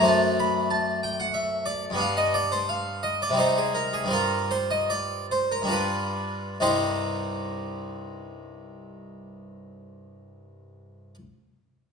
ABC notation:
X:1
M:3/4
L:1/16
Q:1/4=72
K:Cm
V:1 name="Harpsichord"
=a2 =b2 a2 g ^f =e2 d z | f e d c f2 e d c A B A | B2 c e d2 c B =B4 | [C,,G,,G,CEGc]12- |
[C,,G,,G,CEGc]12 |]
V:2 name="Harpsichord"
[^F,,=A,CD]12 | [G,,G,=B,D]8 [C,G,CE]4 | [G,,G,CF]8 [G,,G,DF]4 | z12 |
z12 |]